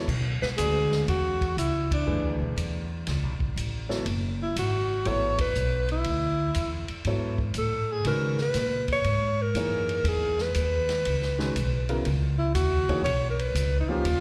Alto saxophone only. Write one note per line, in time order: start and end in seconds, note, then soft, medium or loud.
0.42 0.49 B4 medium
0.57 1.04 G#4 medium
1.09 1.54 F#4 medium
1.58 1.89 E4 medium
1.93 2.38 D4 medium
4.43 4.56 E4 medium
4.59 5.09 F#4 medium
5.07 5.40 C#5 loud
5.41 5.87 B4 medium
5.92 6.86 E4 medium
7.58 7.94 A4 medium
7.92 8.07 G#4 medium
8.07 8.38 A#4 medium
8.42 8.87 B4 loud
8.92 9.43 C#5 loud
9.42 10.10 A#4 medium
10.09 10.43 G#4 medium
10.42 11.90 B4 medium
12.38 12.54 E4 medium
12.55 13.01 F#4 medium
13.04 13.27 C#5 loud
13.30 13.41 A#4 medium
13.40 13.79 B4 medium
13.80 13.90 D#4 medium
13.89 14.20 F4 medium